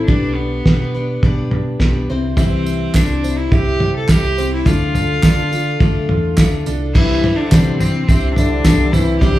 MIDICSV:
0, 0, Header, 1, 7, 480
1, 0, Start_track
1, 0, Key_signature, 0, "major"
1, 0, Tempo, 570885
1, 76, Time_signature, 4, 2, 24, 8
1, 7896, End_track
2, 0, Start_track
2, 0, Title_t, "Cello"
2, 0, Program_c, 0, 42
2, 57, Note_on_c, 0, 62, 89
2, 295, Note_on_c, 0, 59, 81
2, 307, Note_off_c, 0, 62, 0
2, 1029, Note_off_c, 0, 59, 0
2, 1995, Note_on_c, 0, 60, 88
2, 2483, Note_on_c, 0, 62, 93
2, 2495, Note_off_c, 0, 60, 0
2, 2842, Note_on_c, 0, 64, 85
2, 2854, Note_off_c, 0, 62, 0
2, 2964, Note_on_c, 0, 67, 100
2, 2977, Note_off_c, 0, 64, 0
2, 3326, Note_off_c, 0, 67, 0
2, 3336, Note_on_c, 0, 69, 88
2, 3449, Note_on_c, 0, 67, 103
2, 3461, Note_off_c, 0, 69, 0
2, 3808, Note_off_c, 0, 67, 0
2, 3816, Note_on_c, 0, 64, 84
2, 3922, Note_on_c, 0, 65, 103
2, 3935, Note_off_c, 0, 64, 0
2, 5363, Note_off_c, 0, 65, 0
2, 5844, Note_on_c, 0, 64, 100
2, 6188, Note_on_c, 0, 62, 89
2, 6201, Note_off_c, 0, 64, 0
2, 6538, Note_off_c, 0, 62, 0
2, 6543, Note_on_c, 0, 60, 93
2, 6774, Note_off_c, 0, 60, 0
2, 6783, Note_on_c, 0, 60, 97
2, 7014, Note_off_c, 0, 60, 0
2, 7025, Note_on_c, 0, 62, 96
2, 7499, Note_on_c, 0, 64, 91
2, 7512, Note_off_c, 0, 62, 0
2, 7735, Note_off_c, 0, 64, 0
2, 7740, Note_on_c, 0, 67, 108
2, 7896, Note_off_c, 0, 67, 0
2, 7896, End_track
3, 0, Start_track
3, 0, Title_t, "Steel-string acoustic guitar"
3, 0, Program_c, 1, 25
3, 64, Note_on_c, 1, 59, 70
3, 72, Note_on_c, 1, 62, 71
3, 74, Note_on_c, 1, 67, 72
3, 79, Note_on_c, 1, 71, 67
3, 547, Note_off_c, 1, 59, 0
3, 552, Note_off_c, 1, 62, 0
3, 557, Note_on_c, 1, 59, 52
3, 560, Note_off_c, 1, 71, 0
3, 562, Note_on_c, 1, 62, 52
3, 563, Note_off_c, 1, 67, 0
3, 566, Note_on_c, 1, 67, 55
3, 574, Note_on_c, 1, 71, 60
3, 784, Note_off_c, 1, 71, 0
3, 794, Note_off_c, 1, 67, 0
3, 794, Note_on_c, 1, 71, 49
3, 799, Note_off_c, 1, 59, 0
3, 801, Note_off_c, 1, 62, 0
3, 804, Note_on_c, 1, 67, 51
3, 812, Note_on_c, 1, 62, 40
3, 1035, Note_off_c, 1, 62, 0
3, 1038, Note_off_c, 1, 71, 0
3, 1039, Note_off_c, 1, 67, 0
3, 1039, Note_on_c, 1, 59, 66
3, 1045, Note_on_c, 1, 62, 72
3, 1049, Note_on_c, 1, 67, 67
3, 1055, Note_on_c, 1, 71, 65
3, 1506, Note_off_c, 1, 59, 0
3, 1516, Note_off_c, 1, 62, 0
3, 1516, Note_on_c, 1, 59, 61
3, 1518, Note_off_c, 1, 67, 0
3, 1526, Note_on_c, 1, 62, 65
3, 1527, Note_off_c, 1, 71, 0
3, 1528, Note_on_c, 1, 67, 68
3, 1537, Note_on_c, 1, 71, 74
3, 1759, Note_off_c, 1, 71, 0
3, 1760, Note_off_c, 1, 59, 0
3, 1762, Note_on_c, 1, 72, 63
3, 1765, Note_off_c, 1, 62, 0
3, 1765, Note_off_c, 1, 67, 0
3, 1768, Note_on_c, 1, 64, 57
3, 1777, Note_on_c, 1, 60, 52
3, 1781, Note_on_c, 1, 55, 48
3, 2002, Note_off_c, 1, 55, 0
3, 2003, Note_off_c, 1, 60, 0
3, 2003, Note_off_c, 1, 72, 0
3, 2004, Note_off_c, 1, 64, 0
3, 2007, Note_on_c, 1, 48, 72
3, 2010, Note_on_c, 1, 52, 82
3, 2012, Note_on_c, 1, 55, 78
3, 2013, Note_on_c, 1, 60, 73
3, 2014, Note_on_c, 1, 64, 77
3, 2017, Note_on_c, 1, 72, 84
3, 2471, Note_off_c, 1, 55, 0
3, 2475, Note_off_c, 1, 60, 0
3, 2481, Note_on_c, 1, 55, 57
3, 2484, Note_off_c, 1, 64, 0
3, 2485, Note_on_c, 1, 60, 67
3, 2486, Note_off_c, 1, 48, 0
3, 2488, Note_off_c, 1, 52, 0
3, 2489, Note_off_c, 1, 72, 0
3, 2494, Note_on_c, 1, 64, 58
3, 2499, Note_on_c, 1, 72, 67
3, 2710, Note_off_c, 1, 72, 0
3, 2716, Note_off_c, 1, 64, 0
3, 2720, Note_on_c, 1, 72, 51
3, 2722, Note_off_c, 1, 60, 0
3, 2723, Note_off_c, 1, 55, 0
3, 2726, Note_on_c, 1, 64, 49
3, 2732, Note_on_c, 1, 60, 49
3, 2734, Note_on_c, 1, 55, 42
3, 2949, Note_off_c, 1, 55, 0
3, 2958, Note_off_c, 1, 60, 0
3, 2959, Note_on_c, 1, 55, 60
3, 2962, Note_off_c, 1, 64, 0
3, 2963, Note_off_c, 1, 72, 0
3, 2968, Note_on_c, 1, 60, 61
3, 2972, Note_on_c, 1, 64, 59
3, 2976, Note_on_c, 1, 72, 58
3, 3430, Note_off_c, 1, 55, 0
3, 3435, Note_off_c, 1, 60, 0
3, 3440, Note_on_c, 1, 55, 62
3, 3442, Note_off_c, 1, 64, 0
3, 3445, Note_on_c, 1, 60, 64
3, 3450, Note_off_c, 1, 72, 0
3, 3452, Note_on_c, 1, 64, 60
3, 3460, Note_on_c, 1, 72, 61
3, 3667, Note_off_c, 1, 72, 0
3, 3676, Note_off_c, 1, 64, 0
3, 3677, Note_on_c, 1, 72, 51
3, 3678, Note_off_c, 1, 60, 0
3, 3683, Note_off_c, 1, 55, 0
3, 3686, Note_on_c, 1, 64, 55
3, 3688, Note_on_c, 1, 60, 54
3, 3697, Note_on_c, 1, 55, 43
3, 3912, Note_on_c, 1, 50, 79
3, 3914, Note_off_c, 1, 55, 0
3, 3917, Note_off_c, 1, 64, 0
3, 3918, Note_on_c, 1, 57, 81
3, 3920, Note_off_c, 1, 60, 0
3, 3921, Note_on_c, 1, 65, 85
3, 3922, Note_off_c, 1, 72, 0
3, 3923, Note_on_c, 1, 62, 86
3, 3926, Note_on_c, 1, 69, 77
3, 4395, Note_off_c, 1, 57, 0
3, 4399, Note_off_c, 1, 50, 0
3, 4404, Note_off_c, 1, 65, 0
3, 4405, Note_off_c, 1, 62, 0
3, 4405, Note_on_c, 1, 57, 54
3, 4406, Note_off_c, 1, 69, 0
3, 4414, Note_on_c, 1, 62, 58
3, 4420, Note_on_c, 1, 65, 58
3, 4423, Note_on_c, 1, 69, 63
3, 4629, Note_off_c, 1, 69, 0
3, 4639, Note_on_c, 1, 69, 71
3, 4641, Note_off_c, 1, 65, 0
3, 4646, Note_off_c, 1, 57, 0
3, 4650, Note_off_c, 1, 62, 0
3, 4651, Note_on_c, 1, 65, 60
3, 4661, Note_on_c, 1, 62, 53
3, 4879, Note_off_c, 1, 62, 0
3, 4881, Note_on_c, 1, 57, 72
3, 4882, Note_off_c, 1, 69, 0
3, 4883, Note_off_c, 1, 65, 0
3, 4889, Note_on_c, 1, 62, 71
3, 4893, Note_on_c, 1, 65, 69
3, 4901, Note_on_c, 1, 69, 73
3, 5345, Note_off_c, 1, 57, 0
3, 5355, Note_on_c, 1, 57, 70
3, 5356, Note_off_c, 1, 62, 0
3, 5361, Note_off_c, 1, 65, 0
3, 5367, Note_on_c, 1, 62, 67
3, 5369, Note_off_c, 1, 69, 0
3, 5371, Note_on_c, 1, 65, 73
3, 5379, Note_on_c, 1, 69, 72
3, 5597, Note_off_c, 1, 69, 0
3, 5600, Note_off_c, 1, 57, 0
3, 5604, Note_off_c, 1, 65, 0
3, 5605, Note_off_c, 1, 62, 0
3, 5607, Note_on_c, 1, 69, 57
3, 5614, Note_on_c, 1, 65, 57
3, 5624, Note_on_c, 1, 62, 51
3, 5840, Note_on_c, 1, 48, 81
3, 5842, Note_off_c, 1, 62, 0
3, 5844, Note_on_c, 1, 52, 79
3, 5845, Note_off_c, 1, 69, 0
3, 5849, Note_off_c, 1, 65, 0
3, 5849, Note_on_c, 1, 55, 77
3, 5852, Note_on_c, 1, 62, 77
3, 5854, Note_on_c, 1, 64, 73
3, 5856, Note_on_c, 1, 72, 88
3, 6079, Note_off_c, 1, 72, 0
3, 6082, Note_off_c, 1, 48, 0
3, 6084, Note_off_c, 1, 52, 0
3, 6085, Note_off_c, 1, 64, 0
3, 6086, Note_off_c, 1, 55, 0
3, 6087, Note_off_c, 1, 62, 0
3, 6089, Note_on_c, 1, 72, 54
3, 6095, Note_on_c, 1, 64, 53
3, 6099, Note_on_c, 1, 62, 46
3, 6106, Note_on_c, 1, 55, 43
3, 6313, Note_off_c, 1, 55, 0
3, 6314, Note_on_c, 1, 48, 80
3, 6315, Note_off_c, 1, 62, 0
3, 6317, Note_off_c, 1, 64, 0
3, 6317, Note_on_c, 1, 52, 79
3, 6320, Note_off_c, 1, 72, 0
3, 6323, Note_on_c, 1, 55, 69
3, 6326, Note_on_c, 1, 62, 82
3, 6327, Note_on_c, 1, 64, 76
3, 6330, Note_on_c, 1, 72, 84
3, 6786, Note_off_c, 1, 55, 0
3, 6795, Note_off_c, 1, 62, 0
3, 6796, Note_on_c, 1, 55, 61
3, 6797, Note_off_c, 1, 48, 0
3, 6805, Note_on_c, 1, 62, 66
3, 6808, Note_off_c, 1, 64, 0
3, 6811, Note_off_c, 1, 72, 0
3, 6811, Note_on_c, 1, 64, 64
3, 6814, Note_on_c, 1, 72, 64
3, 6830, Note_off_c, 1, 52, 0
3, 7023, Note_off_c, 1, 72, 0
3, 7031, Note_off_c, 1, 64, 0
3, 7033, Note_on_c, 1, 72, 54
3, 7035, Note_off_c, 1, 62, 0
3, 7038, Note_off_c, 1, 55, 0
3, 7041, Note_on_c, 1, 64, 53
3, 7045, Note_on_c, 1, 62, 45
3, 7047, Note_on_c, 1, 55, 45
3, 7267, Note_off_c, 1, 55, 0
3, 7267, Note_off_c, 1, 62, 0
3, 7268, Note_on_c, 1, 48, 83
3, 7270, Note_off_c, 1, 64, 0
3, 7274, Note_on_c, 1, 52, 77
3, 7276, Note_off_c, 1, 72, 0
3, 7277, Note_on_c, 1, 55, 86
3, 7277, Note_on_c, 1, 62, 85
3, 7280, Note_on_c, 1, 64, 75
3, 7285, Note_on_c, 1, 72, 87
3, 7497, Note_off_c, 1, 72, 0
3, 7506, Note_off_c, 1, 64, 0
3, 7507, Note_on_c, 1, 72, 60
3, 7509, Note_off_c, 1, 62, 0
3, 7513, Note_off_c, 1, 48, 0
3, 7515, Note_off_c, 1, 52, 0
3, 7516, Note_on_c, 1, 64, 52
3, 7517, Note_off_c, 1, 55, 0
3, 7519, Note_on_c, 1, 62, 50
3, 7529, Note_on_c, 1, 55, 47
3, 7745, Note_off_c, 1, 55, 0
3, 7747, Note_on_c, 1, 48, 85
3, 7749, Note_off_c, 1, 62, 0
3, 7749, Note_off_c, 1, 64, 0
3, 7751, Note_off_c, 1, 72, 0
3, 7753, Note_on_c, 1, 52, 80
3, 7755, Note_on_c, 1, 55, 74
3, 7759, Note_on_c, 1, 62, 90
3, 7759, Note_on_c, 1, 64, 90
3, 7763, Note_on_c, 1, 72, 96
3, 7896, Note_off_c, 1, 48, 0
3, 7896, Note_off_c, 1, 52, 0
3, 7896, Note_off_c, 1, 55, 0
3, 7896, Note_off_c, 1, 62, 0
3, 7896, Note_off_c, 1, 64, 0
3, 7896, Note_off_c, 1, 72, 0
3, 7896, End_track
4, 0, Start_track
4, 0, Title_t, "Upright piano"
4, 0, Program_c, 2, 0
4, 72, Note_on_c, 2, 62, 75
4, 547, Note_off_c, 2, 62, 0
4, 551, Note_on_c, 2, 59, 84
4, 1027, Note_off_c, 2, 59, 0
4, 1037, Note_on_c, 2, 62, 74
4, 1265, Note_off_c, 2, 62, 0
4, 1277, Note_on_c, 2, 62, 69
4, 1751, Note_off_c, 2, 62, 0
4, 1766, Note_on_c, 2, 60, 77
4, 2000, Note_off_c, 2, 60, 0
4, 2001, Note_on_c, 2, 64, 87
4, 2474, Note_off_c, 2, 64, 0
4, 2482, Note_on_c, 2, 60, 82
4, 2955, Note_off_c, 2, 60, 0
4, 2959, Note_on_c, 2, 64, 86
4, 3190, Note_off_c, 2, 64, 0
4, 3202, Note_on_c, 2, 64, 67
4, 3675, Note_off_c, 2, 64, 0
4, 3684, Note_on_c, 2, 60, 92
4, 3921, Note_off_c, 2, 60, 0
4, 3928, Note_on_c, 2, 65, 81
4, 4398, Note_off_c, 2, 65, 0
4, 4412, Note_on_c, 2, 62, 92
4, 4879, Note_off_c, 2, 62, 0
4, 4889, Note_on_c, 2, 65, 82
4, 5122, Note_off_c, 2, 65, 0
4, 5134, Note_on_c, 2, 65, 71
4, 5599, Note_off_c, 2, 65, 0
4, 5606, Note_on_c, 2, 62, 88
4, 5840, Note_off_c, 2, 62, 0
4, 5854, Note_on_c, 2, 64, 82
4, 6318, Note_off_c, 2, 64, 0
4, 6325, Note_on_c, 2, 60, 92
4, 6793, Note_off_c, 2, 60, 0
4, 6812, Note_on_c, 2, 64, 89
4, 7036, Note_off_c, 2, 64, 0
4, 7048, Note_on_c, 2, 64, 75
4, 7513, Note_off_c, 2, 64, 0
4, 7522, Note_on_c, 2, 60, 77
4, 7754, Note_off_c, 2, 60, 0
4, 7756, Note_on_c, 2, 64, 86
4, 7896, Note_off_c, 2, 64, 0
4, 7896, End_track
5, 0, Start_track
5, 0, Title_t, "Trombone"
5, 0, Program_c, 3, 57
5, 5852, Note_on_c, 3, 52, 79
5, 6200, Note_on_c, 3, 50, 70
5, 6213, Note_off_c, 3, 52, 0
5, 6560, Note_off_c, 3, 50, 0
5, 6568, Note_on_c, 3, 48, 62
5, 6787, Note_off_c, 3, 48, 0
5, 6810, Note_on_c, 3, 48, 71
5, 7028, Note_off_c, 3, 48, 0
5, 7041, Note_on_c, 3, 50, 79
5, 7515, Note_on_c, 3, 52, 83
5, 7528, Note_off_c, 3, 50, 0
5, 7756, Note_off_c, 3, 52, 0
5, 7760, Note_on_c, 3, 55, 96
5, 7896, Note_off_c, 3, 55, 0
5, 7896, End_track
6, 0, Start_track
6, 0, Title_t, "Picked electric bass"
6, 0, Program_c, 4, 34
6, 71, Note_on_c, 4, 35, 80
6, 506, Note_off_c, 4, 35, 0
6, 553, Note_on_c, 4, 47, 78
6, 988, Note_off_c, 4, 47, 0
6, 1035, Note_on_c, 4, 47, 87
6, 1470, Note_off_c, 4, 47, 0
6, 1518, Note_on_c, 4, 35, 82
6, 1736, Note_off_c, 4, 35, 0
6, 1766, Note_on_c, 4, 36, 94
6, 2413, Note_off_c, 4, 36, 0
6, 2480, Note_on_c, 4, 36, 80
6, 2914, Note_off_c, 4, 36, 0
6, 2959, Note_on_c, 4, 36, 100
6, 3178, Note_off_c, 4, 36, 0
6, 3204, Note_on_c, 4, 48, 87
6, 3421, Note_off_c, 4, 48, 0
6, 3442, Note_on_c, 4, 36, 84
6, 3876, Note_off_c, 4, 36, 0
6, 3921, Note_on_c, 4, 38, 87
6, 4355, Note_off_c, 4, 38, 0
6, 4404, Note_on_c, 4, 50, 85
6, 4836, Note_off_c, 4, 50, 0
6, 4884, Note_on_c, 4, 50, 88
6, 5100, Note_off_c, 4, 50, 0
6, 5132, Note_on_c, 4, 40, 78
6, 5345, Note_off_c, 4, 40, 0
6, 5365, Note_on_c, 4, 38, 81
6, 5581, Note_off_c, 4, 38, 0
6, 5612, Note_on_c, 4, 36, 82
6, 5824, Note_off_c, 4, 36, 0
6, 5846, Note_on_c, 4, 36, 98
6, 6060, Note_off_c, 4, 36, 0
6, 6322, Note_on_c, 4, 48, 81
6, 6752, Note_off_c, 4, 48, 0
6, 6802, Note_on_c, 4, 36, 88
6, 7231, Note_off_c, 4, 36, 0
6, 7276, Note_on_c, 4, 36, 87
6, 7706, Note_off_c, 4, 36, 0
6, 7750, Note_on_c, 4, 36, 93
6, 7896, Note_off_c, 4, 36, 0
6, 7896, End_track
7, 0, Start_track
7, 0, Title_t, "Drums"
7, 70, Note_on_c, 9, 36, 101
7, 70, Note_on_c, 9, 43, 102
7, 154, Note_off_c, 9, 36, 0
7, 154, Note_off_c, 9, 43, 0
7, 551, Note_on_c, 9, 38, 95
7, 552, Note_on_c, 9, 36, 105
7, 636, Note_off_c, 9, 36, 0
7, 636, Note_off_c, 9, 38, 0
7, 1033, Note_on_c, 9, 36, 94
7, 1033, Note_on_c, 9, 43, 101
7, 1117, Note_off_c, 9, 36, 0
7, 1117, Note_off_c, 9, 43, 0
7, 1273, Note_on_c, 9, 43, 70
7, 1357, Note_off_c, 9, 43, 0
7, 1511, Note_on_c, 9, 38, 94
7, 1514, Note_on_c, 9, 36, 97
7, 1595, Note_off_c, 9, 38, 0
7, 1598, Note_off_c, 9, 36, 0
7, 1992, Note_on_c, 9, 43, 105
7, 1995, Note_on_c, 9, 36, 108
7, 1996, Note_on_c, 9, 54, 65
7, 2076, Note_off_c, 9, 43, 0
7, 2079, Note_off_c, 9, 36, 0
7, 2080, Note_off_c, 9, 54, 0
7, 2240, Note_on_c, 9, 54, 68
7, 2324, Note_off_c, 9, 54, 0
7, 2474, Note_on_c, 9, 38, 97
7, 2475, Note_on_c, 9, 39, 94
7, 2476, Note_on_c, 9, 36, 99
7, 2486, Note_on_c, 9, 54, 95
7, 2558, Note_off_c, 9, 38, 0
7, 2559, Note_off_c, 9, 39, 0
7, 2561, Note_off_c, 9, 36, 0
7, 2570, Note_off_c, 9, 54, 0
7, 2726, Note_on_c, 9, 54, 76
7, 2810, Note_off_c, 9, 54, 0
7, 2958, Note_on_c, 9, 36, 99
7, 2958, Note_on_c, 9, 43, 101
7, 2968, Note_on_c, 9, 54, 26
7, 3042, Note_off_c, 9, 36, 0
7, 3042, Note_off_c, 9, 43, 0
7, 3052, Note_off_c, 9, 54, 0
7, 3197, Note_on_c, 9, 43, 79
7, 3281, Note_off_c, 9, 43, 0
7, 3433, Note_on_c, 9, 39, 78
7, 3438, Note_on_c, 9, 36, 94
7, 3438, Note_on_c, 9, 38, 94
7, 3441, Note_on_c, 9, 54, 100
7, 3517, Note_off_c, 9, 39, 0
7, 3522, Note_off_c, 9, 38, 0
7, 3523, Note_off_c, 9, 36, 0
7, 3526, Note_off_c, 9, 54, 0
7, 3684, Note_on_c, 9, 54, 68
7, 3768, Note_off_c, 9, 54, 0
7, 3917, Note_on_c, 9, 43, 101
7, 3919, Note_on_c, 9, 36, 98
7, 3924, Note_on_c, 9, 54, 75
7, 4001, Note_off_c, 9, 43, 0
7, 4003, Note_off_c, 9, 36, 0
7, 4008, Note_off_c, 9, 54, 0
7, 4160, Note_on_c, 9, 43, 77
7, 4164, Note_on_c, 9, 54, 76
7, 4244, Note_off_c, 9, 43, 0
7, 4248, Note_off_c, 9, 54, 0
7, 4396, Note_on_c, 9, 39, 87
7, 4399, Note_on_c, 9, 38, 99
7, 4400, Note_on_c, 9, 36, 105
7, 4407, Note_on_c, 9, 54, 98
7, 4480, Note_off_c, 9, 39, 0
7, 4483, Note_off_c, 9, 38, 0
7, 4484, Note_off_c, 9, 36, 0
7, 4491, Note_off_c, 9, 54, 0
7, 4646, Note_on_c, 9, 54, 68
7, 4730, Note_off_c, 9, 54, 0
7, 4880, Note_on_c, 9, 43, 108
7, 4881, Note_on_c, 9, 36, 111
7, 4885, Note_on_c, 9, 54, 28
7, 4964, Note_off_c, 9, 43, 0
7, 4965, Note_off_c, 9, 36, 0
7, 4969, Note_off_c, 9, 54, 0
7, 5120, Note_on_c, 9, 43, 74
7, 5204, Note_off_c, 9, 43, 0
7, 5359, Note_on_c, 9, 39, 89
7, 5361, Note_on_c, 9, 38, 103
7, 5363, Note_on_c, 9, 36, 90
7, 5363, Note_on_c, 9, 54, 104
7, 5443, Note_off_c, 9, 39, 0
7, 5445, Note_off_c, 9, 38, 0
7, 5447, Note_off_c, 9, 36, 0
7, 5447, Note_off_c, 9, 54, 0
7, 5602, Note_on_c, 9, 54, 73
7, 5686, Note_off_c, 9, 54, 0
7, 5844, Note_on_c, 9, 36, 104
7, 5845, Note_on_c, 9, 43, 85
7, 5845, Note_on_c, 9, 49, 102
7, 5848, Note_on_c, 9, 54, 29
7, 5928, Note_off_c, 9, 36, 0
7, 5929, Note_off_c, 9, 43, 0
7, 5929, Note_off_c, 9, 49, 0
7, 5932, Note_off_c, 9, 54, 0
7, 6086, Note_on_c, 9, 43, 88
7, 6170, Note_off_c, 9, 43, 0
7, 6320, Note_on_c, 9, 39, 87
7, 6322, Note_on_c, 9, 36, 108
7, 6322, Note_on_c, 9, 38, 107
7, 6322, Note_on_c, 9, 43, 78
7, 6323, Note_on_c, 9, 54, 94
7, 6404, Note_off_c, 9, 39, 0
7, 6406, Note_off_c, 9, 36, 0
7, 6406, Note_off_c, 9, 38, 0
7, 6406, Note_off_c, 9, 43, 0
7, 6407, Note_off_c, 9, 54, 0
7, 6562, Note_on_c, 9, 43, 76
7, 6562, Note_on_c, 9, 54, 84
7, 6646, Note_off_c, 9, 43, 0
7, 6646, Note_off_c, 9, 54, 0
7, 6799, Note_on_c, 9, 36, 102
7, 6799, Note_on_c, 9, 43, 85
7, 6802, Note_on_c, 9, 54, 79
7, 6883, Note_off_c, 9, 36, 0
7, 6883, Note_off_c, 9, 43, 0
7, 6886, Note_off_c, 9, 54, 0
7, 7032, Note_on_c, 9, 43, 86
7, 7043, Note_on_c, 9, 54, 83
7, 7116, Note_off_c, 9, 43, 0
7, 7127, Note_off_c, 9, 54, 0
7, 7270, Note_on_c, 9, 38, 102
7, 7270, Note_on_c, 9, 43, 83
7, 7274, Note_on_c, 9, 36, 97
7, 7274, Note_on_c, 9, 39, 88
7, 7275, Note_on_c, 9, 54, 109
7, 7354, Note_off_c, 9, 38, 0
7, 7354, Note_off_c, 9, 43, 0
7, 7358, Note_off_c, 9, 36, 0
7, 7358, Note_off_c, 9, 39, 0
7, 7359, Note_off_c, 9, 54, 0
7, 7509, Note_on_c, 9, 43, 87
7, 7514, Note_on_c, 9, 54, 84
7, 7593, Note_off_c, 9, 43, 0
7, 7598, Note_off_c, 9, 54, 0
7, 7746, Note_on_c, 9, 43, 84
7, 7750, Note_on_c, 9, 36, 114
7, 7753, Note_on_c, 9, 54, 33
7, 7830, Note_off_c, 9, 43, 0
7, 7834, Note_off_c, 9, 36, 0
7, 7837, Note_off_c, 9, 54, 0
7, 7896, End_track
0, 0, End_of_file